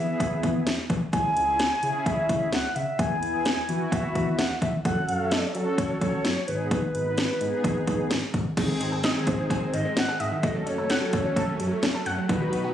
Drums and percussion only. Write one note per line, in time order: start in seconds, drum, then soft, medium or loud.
0.20 kick medium
0.20 closed hi-hat medium
0.43 kick medium
0.43 closed hi-hat medium
0.67 snare loud
0.67 closed hi-hat medium
0.90 kick medium
0.90 closed hi-hat medium
1.13 kick loud
1.13 closed hi-hat medium
1.37 closed hi-hat medium
1.59 snare loud
1.59 closed hi-hat medium
1.83 closed hi-hat medium
2.06 kick medium
2.06 closed hi-hat medium
2.29 kick medium
2.29 closed hi-hat medium
2.53 snare loud
2.53 closed hi-hat medium
2.76 closed hi-hat medium
2.99 kick loud
2.99 closed hi-hat medium
3.23 closed hi-hat medium
3.45 snare loud
3.45 closed hi-hat medium
3.69 closed hi-hat medium
3.92 kick medium
3.92 closed hi-hat medium
4.15 kick medium
4.15 closed hi-hat medium
4.39 snare loud
4.39 closed hi-hat medium
4.62 kick medium
4.62 closed hi-hat medium
4.85 kick loud
4.85 closed hi-hat medium
5.09 closed hi-hat medium
5.31 snare loud
5.31 closed hi-hat medium
5.55 closed hi-hat medium
5.78 kick medium
5.78 closed hi-hat medium
6.01 kick medium
6.01 closed hi-hat medium
6.25 snare loud
6.25 closed hi-hat medium
6.48 closed hi-hat medium
6.71 kick loud
6.71 closed hi-hat medium
6.95 closed hi-hat medium
7.18 snare loud
7.18 closed hi-hat medium
7.41 closed hi-hat medium
7.64 kick loud
7.64 closed hi-hat medium
7.87 kick medium
7.87 closed hi-hat medium
8.11 snare loud
8.11 closed hi-hat medium
8.34 kick medium
8.34 closed hi-hat medium
8.57 kick loud
8.57 closed hi-hat medium
8.57 crash medium
8.81 closed hi-hat medium
9.04 snare loud
9.04 closed hi-hat medium
9.27 kick medium
9.27 closed hi-hat medium
9.50 kick medium
9.50 closed hi-hat medium
9.74 closed hi-hat medium
9.97 snare loud
9.97 closed hi-hat medium
10.20 closed hi-hat medium
10.43 kick loud
10.43 closed hi-hat medium
10.67 closed hi-hat medium
10.90 snare loud
10.90 closed hi-hat medium
11.13 kick medium
11.13 closed hi-hat medium
11.36 kick loud
11.36 closed hi-hat medium
11.60 closed hi-hat medium
11.83 snare loud
11.83 closed hi-hat medium
12.06 closed hi-hat medium
12.29 kick loud
12.29 closed hi-hat medium
12.53 closed hi-hat medium